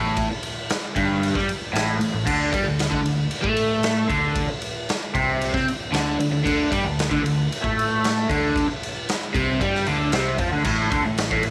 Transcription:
Already playing: A1 A2
0.17 kick, ride
0.30 muted overdriven electric guitar stroke, muted picked electric bass stroke
0.43 ride
0.70 snare, ride
0.96 G1 G2, kick, ride
1.23 ride
1.35 G2 G3, kick, snare
1.49 ride
1.73 A1 A2, snare, ride
1.99 A1 A2, ride
2.13 A1 A2
2.25 D2 D3, kick, crash
2.52 G2 G3, kick, ride
2.63 D2 D3
2.79 snare, ride
2.90 D2 D3, kick
3.03 D2 D3, ride
3.31 ride
3.42 A2 A3, kick
3.57 ride
3.83 snare, ride
4.08 D2 D3, kick, ride
4.35 kick, ride
4.49 muted picked electric bass stroke, muted overdriven electric guitar stroke
4.62 ride
4.89 snare, ride
5.15 C2 C3, kick, ride
5.41 ride
5.54 C3 C4, kick, snare
5.68 ride
5.92 D2 D3, snare, ride
6.19 D2 D3, ride
6.31 D2 D3
6.44 D2 D3, kick, ride
6.70 G2 G3, kick, ride
6.84 D2 D3
6.99 snare, ride
7.11 D2 D3, kick
7.24 D2 D3, ride
7.52 ride
7.62 A2 A3, kick
7.79 ride
8.04 snare, ride
8.29 D2 D3, kick, ride
8.56 kick, ride
8.68 muted picked electric bass stroke, muted overdriven electric guitar stroke
8.83 ride
9.09 snare, ride
9.34 C2 C3, kick, ride
9.60 G2 G3, kick, ride
9.75 snare
9.86 D2 D3, ride
10.12 C2 C3, snare, ride
10.38 F2 F3, kick, ride
10.53 D2 D3
10.65 A1 A2, kick, crash
10.91 D2 D3, kick, ride
11.04 A1 A2
11.18 snare, ride
11.31 A1 A2, kick
11.43 A1 A2, ride

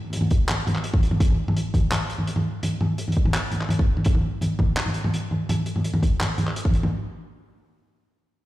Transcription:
0.04 mid tom
0.10 closed hi-hat, mid tom
0.16 mid tom
0.21 mid tom
0.31 kick, closed hi-hat
0.48 clap, closed hi-hat, mid tom
0.67 closed hi-hat, mid tom
0.75 clap
0.84 closed hi-hat
0.93 kick, mid tom
1.03 closed hi-hat
1.11 mid tom
1.20 kick, closed hi-hat
1.30 mid tom
1.48 mid tom
1.57 closed hi-hat
1.74 kick, closed hi-hat, mid tom
1.92 clap, closed hi-hat, mid tom
2.10 closed hi-hat
2.18 mid tom
2.27 closed hi-hat
2.36 mid tom
2.63 closed hi-hat, mid tom
2.81 mid tom
2.98 closed hi-hat
3.08 mid tom
3.12 closed hi-hat
3.17 kick
3.25 mid tom
3.33 clap, closed hi-hat
3.51 closed hi-hat, mid tom
3.61 clap
3.69 closed hi-hat, mid tom
3.79 kick
3.97 mid tom
4.05 kick, closed hi-hat
4.15 mid tom
4.41 closed hi-hat, mid tom
4.59 kick, mid tom
4.77 clap, closed hi-hat
4.86 mid tom
4.94 closed hi-hat
5.04 mid tom
5.14 closed hi-hat
5.31 mid tom
5.49 closed hi-hat, mid tom
5.66 closed hi-hat
5.76 mid tom
5.84 closed hi-hat
5.94 mid tom
6.03 kick, closed hi-hat
6.20 clap, closed hi-hat, mid tom
6.38 closed hi-hat, mid tom
6.47 clap
6.56 closed hi-hat
6.65 kick
6.69 mid tom
6.74 closed hi-hat
6.83 mid tom

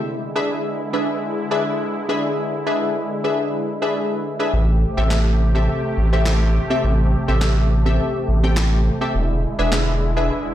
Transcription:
Already playing: D3 G#3 E4
0.36 D4 G#4 B4 E5
0.93 D4 G#4 B4 E5
1.51 D4 G#4 B4 E5
2.09 D4 G#4 B4 E5
2.66 D4 G#4 B4 E5
3.24 D4 G#4 B4 E5
3.82 D4 G#4 B4 E5
4.39 D4 G#4 B4 E5
4.53 A1 C3 A3 G4
4.97 A1 C4 G4 A4 E5
5.10 snare, clap
5.55 C4 G4 A4 E5
5.98 A1
6.13 C4 G4 A4 E5
6.26 snare, clap
6.70 C4 G4 A4 E5
6.84 A1
7.28 A1 C4 G4 A4 E5
7.41 snare, clap
7.86 C4 G4 A4 E5
8.28 A1
8.43 C4 G4 A4 G5
8.56 snare, clap
9.01 C4 G4 A4 E5
9.15 E1 D3 G#3 E4
9.59 E1 D4 G#4 B4 E5
9.72 snare, clap
10.16 D4 G#4 B4 E5

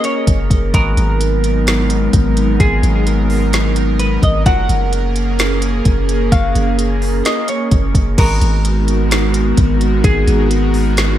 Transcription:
Already playing: A#3 C#4 G#4 A#4
0.04 C#5, closed hi-hat
0.27 F#1, kick, closed hi-hat
0.50 F#1, kick, closed hi-hat
0.74 G#1 F#3 G#3 B3 D#4 F#4 A#4, kick, closed hi-hat
0.97 G#1, closed hi-hat
1.21 closed hi-hat
1.44 closed hi-hat
1.67 snare, closed hi-hat
1.90 closed hi-hat
2.13 G#1, kick, closed hi-hat
2.37 closed hi-hat
2.60 G#1 F4 G#4, kick, closed hi-hat
2.83 G#1, closed hi-hat
3.07 closed hi-hat
3.30 open hi-hat
3.53 snare, closed hi-hat
3.76 closed hi-hat
3.99 B4, closed hi-hat
4.23 G#1 D#5, kick, closed hi-hat
4.46 F#1 F3 F#3 A#3 C#4 G#4 A#4 F#5, kick, closed hi-hat
4.69 F#1, closed hi-hat
4.93 closed hi-hat
5.16 closed hi-hat
5.39 snare, closed hi-hat
5.62 closed hi-hat
5.85 F#1, kick, closed hi-hat
6.09 closed hi-hat
6.32 F#1 F#4 F5, kick, closed hi-hat
6.55 F#1, closed hi-hat
6.79 closed hi-hat
7.02 open hi-hat
7.25 D#5, snare, closed hi-hat
7.48 C#5, closed hi-hat
7.71 F#1, kick, closed hi-hat
7.95 F#1, kick, closed hi-hat
8.18 G#1 G#3 B3 D#4 F#4 A#4, kick, closed hi-hat, crash
8.41 G#1, closed hi-hat
8.65 closed hi-hat
8.88 closed hi-hat
9.11 snare, closed hi-hat
9.34 closed hi-hat
9.57 G#1, kick, closed hi-hat
9.81 closed hi-hat
10.04 G#1 G#4, kick, closed hi-hat
10.27 G#1, closed hi-hat
10.51 closed hi-hat
10.74 open hi-hat
10.97 snare, closed hi-hat

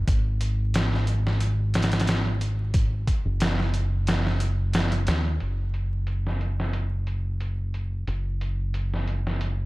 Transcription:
0.08 G#1, kick, closed hi-hat
0.41 closed hi-hat
0.74 snare, closed hi-hat
0.93 snare
1.07 closed hi-hat
1.27 snare
1.41 closed hi-hat
1.74 snare, closed hi-hat
1.82 snare, closed hi-hat
1.92 snare, closed hi-hat
2.00 snare, closed hi-hat
2.07 snare, closed hi-hat
2.41 closed hi-hat
2.74 kick, closed hi-hat
3.08 kick, closed hi-hat
3.25 F#1
3.40 snare, closed hi-hat
3.60 snare
3.74 closed hi-hat
4.07 snare, closed hi-hat
4.27 snare
4.40 closed hi-hat
4.73 snare, closed hi-hat
4.92 closed hi-hat
5.07 D#2, snare, closed hi-hat
5.40 F#1, closed hi-hat
5.74 closed hi-hat
6.07 closed hi-hat
6.27 snare
6.41 closed hi-hat
6.60 snare
6.73 closed hi-hat
7.07 closed hi-hat
7.40 closed hi-hat
7.74 closed hi-hat
8.07 F#1, closed hi-hat
8.41 closed hi-hat
8.74 closed hi-hat
8.94 snare
9.08 closed hi-hat
9.27 snare
9.41 closed hi-hat

